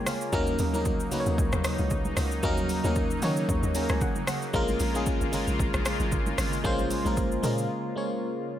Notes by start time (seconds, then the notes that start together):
Already playing: C#3 G#3 A#3 C#4 F4 G#4 A#4 C#5 G5 G#5
0.06 F5, cross-stick, open hi-hat, low conga, shaker
0.21 shaker
0.33 D#2 F#3 A#3 C#4 D#4 A#4, kick, shaker
0.47 high conga, shaker
0.59 D#2, open hi-hat, shaker
0.73 F#3 A#3 C#4 D#4 A#4, high conga, shaker
0.85 kick, shaker
1.00 C#2, shaker
1.11 F#3 A#3 C#4 D#4 B4, open hi-hat, low conga, shaker
1.20 C#5
1.26 D#2, shaker
1.38 C#2, kick, shaker
1.52 D#2, cross-stick, high conga, shaker
1.64 cross-stick, open hi-hat, shaker
1.78 C#2, high conga, shaker
1.90 kick, low conga, shaker
2.05 high conga, shaker
2.17 C#2, cross-stick, open hi-hat, low conga, shaker
2.31 shaker
2.43 D#2 F#3 A#3 C#4 D#4 A#4, kick, shaker
2.57 high conga, shaker
2.69 open hi-hat, shaker
2.84 D#2 F#3 A#3 C#4 D#4 A#4, high conga, shaker
2.96 kick, shaker
3.11 shaker
3.22 D#3 F#3 A#3 C#4 D#4 C#5, open hi-hat, low conga, shaker
3.37 shaker
3.49 D#2, kick, shaker
3.63 D#2, high conga, shaker
3.75 F#3 A#3 C#4 D#4 G#4 A#5, open hi-hat, shaker
3.83 A#4
3.89 C#2 G#5, cross-stick, high conga, shaker
4.01 F#5, kick, low conga, shaker
4.16 high conga, shaker
4.27 F#5, cross-stick, open hi-hat, low conga, shaker
4.42 shaker
4.53 A#1 C#3 G#3 A#3 C#4 F4 A#4, kick, shaker
4.68 high conga, shaker
4.80 A#1, open hi-hat, shaker
4.94 G#3 A#3 C#4 F4 G#4, high conga, shaker
5.06 kick, shaker
5.21 G#1, shaker
5.32 G#3 A#3 C#4 F4 A#4, open hi-hat, low conga, shaker
5.48 A#1, shaker
5.59 G#1, kick, shaker
5.74 A#1, cross-stick, high conga, shaker
5.85 cross-stick, open hi-hat, shaker
6.00 G#1, high conga, shaker
6.12 kick, low conga, shaker
6.26 high conga, shaker
6.38 G#1, cross-stick, open hi-hat, low conga, shaker
6.53 shaker
6.64 A#1 G#3 A#3 C#4 F4 C5, kick, shaker
6.79 high conga, shaker
6.91 open hi-hat, shaker
7.05 A#1 G#3 A#3 C#4 F4 A#4, high conga, shaker
7.17 kick, shaker
7.32 shaker
7.43 A#2 G#3 A#3 C#4 F4 A#4, open hi-hat, low conga, shaker
7.58 shaker
7.96 G#3 A#3 C#4 F4 C#5